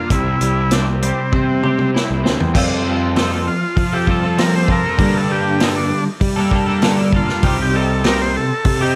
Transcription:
Already playing: clean electric guitar G3 A#3 D4 A4
0.10 picked electric bass C2, clean electric guitar C3, transistor combo organ E4, kick, closed hi-hat
0.41 picked electric bass C2, clean electric guitar G3, closed hi-hat
0.71 clean electric guitar C4, transistor combo organ D4, snare, closed hi-hat
1.02 clean electric guitar G3, transistor combo organ C4, closed hi-hat
1.32 picked electric bass C3, clean electric guitar C4, kick, high tom
1.63 clean electric guitar G4, mid tom
1.79 mid tom
1.94 clean electric guitar E4, snare
2.11 picked electric bass C2
2.24 picked electric bass D2, clean electric guitar C4, snare
2.40 picked electric bass E2, floor tom
2.54 picked electric bass F2, clean electric guitar F3 G3 C4 F4 A4, kick, crash
2.85 clean electric guitar G3 C4 F4 A4
3.15 clean electric guitar F3 G3 C4 F4 A4, snare, open hi-hat
3.31 clean electric guitar C4 F4 A4
3.46 transistor combo organ F4, muted clean electric guitar stroke
3.77 picked electric bass F3, kick, open hi-hat
3.93 clean electric guitar C4 F4 A4, transistor combo organ G4
4.07 clean electric guitar G3 C4 F4 A4, transistor combo organ A4, kick
4.22 clean electric guitar C4 F4 A4
4.38 clean electric guitar F3 G3 C4 F4 A4, transistor combo organ A#4, snare, open hi-hat
4.53 clean electric guitar C4 F4 A4, transistor combo organ C5
4.68 clean electric guitar G3 C4 F4 A4, transistor combo organ A#4, kick
4.83 clean electric guitar C4 F4 A4
4.98 clean electric guitar G2 D3 G3 A#3 D4 A4, picked electric bass G2, kick, open hi-hat
5.17 transistor combo organ A4
5.29 clean electric guitar G3 A#3 D4 A4, transistor combo organ G4
5.60 clean electric guitar G2 D3 G3 A#3 D4 A4, transistor combo organ D#4, snare, open hi-hat
5.75 clean electric guitar G3 A#3 D4 A4, transistor combo organ D4
5.90 muted clean electric guitar stroke
6.21 picked electric bass G3, kick, open hi-hat
6.36 clean electric guitar G3 A#3 D4 A4
6.51 clean electric guitar G3 A#3 D4 A4, kick
6.66 clean electric guitar G3 A#3 D4 A4
6.81 clean electric guitar G2 D3 G3 A#3 D4 A4, snare, open hi-hat
6.97 clean electric guitar G3 A#3 D4 A4
7.12 clean electric guitar G3 A#3 D4 A4, transistor combo organ F4, kick
7.28 clean electric guitar G3 A#3 D4 A4, snare
7.43 picked electric bass C2, clean electric guitar C3 G3 C4 D#4 G4, kick, open hi-hat
7.62 transistor combo organ G4
7.73 clean electric guitar G3 C4 D#4 G4, transistor combo organ A4
8.03 clean electric guitar C3 G3 C4 D#4 G4, transistor combo organ A#4, snare, open hi-hat
8.19 clean electric guitar C4 D#4 G4, transistor combo organ C5
8.35 transistor combo organ A4, muted clean electric guitar stroke
8.65 picked electric bass C3, kick, open hi-hat
8.81 clean electric guitar C4 D#4 G4, transistor combo organ G4

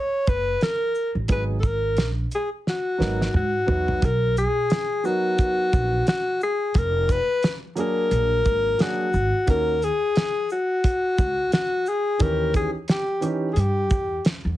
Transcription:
Already playing: alto saxophone C#5
0.27 upright bass F#1, alto saxophone B4, kick, shaker
0.61 alto saxophone A#4, snare, closed hi-hat
0.95 shaker
1.15 upright bass A1
1.28 upright bass G#1, grand piano F#3 B3 D#4 G#4, alto saxophone B4, kick, closed hi-hat
1.60 alto saxophone A4, kick, shaker
1.66 alto saxophone A#4
1.97 upright bass A#1, snare, closed hi-hat
2.32 alto saxophone G#4, closed hi-hat, shaker
2.67 alto saxophone F#4, snare
2.98 upright bass G#1, grand piano F#3 B3 D#4 A#4, snare
3.22 snare
3.34 upright bass G#2, alto saxophone F#4, mid tom
3.66 upright bass E2, grand piano F#3 B3 D#4 F#4, floor tom
3.88 floor tom
4.02 upright bass B1, alto saxophone A#4, kick, closed hi-hat
4.37 alto saxophone G#4, closed hi-hat, shaker
4.70 snare, closed hi-hat
5.03 grand piano F#3 B3 D#4 A#4, alto saxophone F#4, shaker
5.38 kick, closed hi-hat
5.73 upright bass A#1, kick, shaker
6.07 alto saxophone F#4, snare, closed hi-hat
6.41 alto saxophone G#4, shaker
6.74 upright bass F1, alto saxophone A#4, kick, closed hi-hat
7.09 alto saxophone B4, kick, closed hi-hat, shaker
7.43 snare, closed hi-hat
7.75 grand piano F#3 A#3 D4 G#4, closed hi-hat, shaker
7.80 alto saxophone A#4
8.11 upright bass A#1, closed hi-hat
8.45 upright bass G#1, kick, shaker
8.78 grand piano F#3 A#3 D4 G#4, alto saxophone F#4, snare, closed hi-hat
9.13 upright bass G#1, shaker
9.46 upright bass D#2, grand piano D#3 A#3 C#4 F#4, alto saxophone A#4, kick, closed hi-hat
9.82 alto saxophone G#4, closed hi-hat, shaker
10.16 snare, closed hi-hat
10.50 alto saxophone F#4, shaker
10.84 kick, closed hi-hat
11.18 upright bass C#2, kick, shaker
11.52 alto saxophone F#4, snare, closed hi-hat
11.86 alto saxophone G#4, shaker
12.19 upright bass D#2, grand piano E3 C#4 D#4 G4, alto saxophone A#4, kick, closed hi-hat
12.54 alto saxophone G#4, kick, closed hi-hat, shaker
12.88 alto saxophone G4, snare, closed hi-hat
13.21 grand piano E3 C#4 D#4 G4, closed hi-hat, shaker
13.53 upright bass G2, alto saxophone G#4, closed hi-hat
13.59 alto saxophone G4
13.90 upright bass E2, kick, shaker
14.25 snare, closed hi-hat
14.45 upright bass E2

